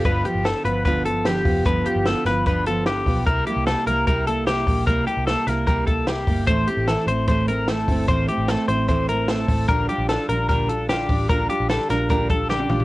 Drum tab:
HH |x-x-x-x-x-x-x-o-|x-x-x-x-x-x-x-o-|x-x-x-x-x-x-x-o-|x-x-x-x-x-x-x-o-|
SD |----o-------o---|----o-o-----o---|----o-------o---|----o-o-----o---|
T1 |----------------|----------------|----------------|----------------|
T2 |----------------|----------------|----------------|----------------|
FT |----------------|----------------|----------------|----------------|
BD |o-------o-----o-|o-------o-----o-|o-------o-----o-|o-------o-o---o-|

HH |x-x-x-x-x-x-x-o-|x-x-x-x-x-x-x-o-|x-x-x-x-x-x-x-o-|x-x-x-x-x-x-----|
SD |----o-------o---|----o-------o---|----o-------o---|----o-o-----o---|
T1 |----------------|----------------|----------------|-------------o--|
T2 |----------------|----------------|----------------|--------------o-|
FT |----------------|----------------|----------------|---------------o|
BD |o-------o-----o-|o-------o-----o-|o-------o-----o-|o-------o-o-----|